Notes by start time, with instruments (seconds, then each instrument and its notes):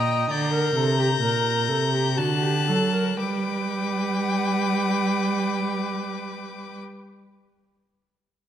Already playing: cello A#2, viola D#5, violin G5 A#5
0.30 cello D3, viola D5, violin A#5 G6
0.53 viola A#4
0.76 cello C3, viola A4
0.99 viola G4
1.21 cello A#2, viola A#4
1.69 cello C3, viola A4
1.93 viola G4
2.17 cello D3, viola F#4, violin A5 F#6
2.42 viola G4
2.68 cello F#3, viola A4
2.93 viola A#4
3.19 cello G3, viola B4, violin G5 D6